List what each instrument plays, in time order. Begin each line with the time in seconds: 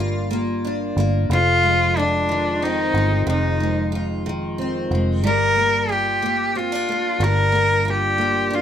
Already playing: fingered electric bass G1, steel-string acoustic guitar G3 A#3 D4 F4
0.31 steel-string acoustic guitar A#3
0.65 steel-string acoustic guitar D4
0.96 fingered electric bass G1, steel-string acoustic guitar A#3
1.29 fingered electric bass F1, steel-string acoustic guitar F2, cello F4
1.63 steel-string acoustic guitar G#3
1.97 cello D4, steel-string acoustic guitar F4
2.29 steel-string acoustic guitar D#3
2.62 steel-string acoustic guitar C4, cello D#4
2.94 fingered electric bass G1, steel-string acoustic guitar G#3
3.26 fingered electric bass F1, steel-string acoustic guitar F2, cello D#4
3.60 steel-string acoustic guitar G#3
3.92 steel-string acoustic guitar F4
4.26 steel-string acoustic guitar D#3
4.58 steel-string acoustic guitar C4
4.91 fingered electric bass F1, steel-string acoustic guitar G#3
5.22 fingered electric bass G1, steel-string acoustic guitar G3, cello A#4
5.56 steel-string acoustic guitar A#3
5.89 steel-string acoustic guitar F4, cello G4
6.22 steel-string acoustic guitar A#3
6.55 steel-string acoustic guitar C4, cello F4
6.72 steel-string acoustic guitar D4
6.87 fingered electric bass F1, steel-string acoustic guitar A#3
7.20 fingered electric bass G1, steel-string acoustic guitar G3, cello A#4
7.52 steel-string acoustic guitar A#3
7.85 steel-string acoustic guitar F4
7.89 cello G4
8.18 steel-string acoustic guitar A#3
8.50 steel-string acoustic guitar D4
8.55 cello F4